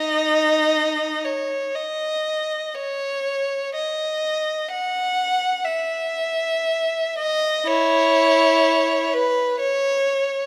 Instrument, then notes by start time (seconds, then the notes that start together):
violin
Already playing: D#4 D#5
1.24 C#5
1.76 D#5
2.74 C#5
3.75 D#5
4.71 F#5
5.65 E5
7.18 D#5
7.66 E4 C#5
9.13 B4
9.60 C#5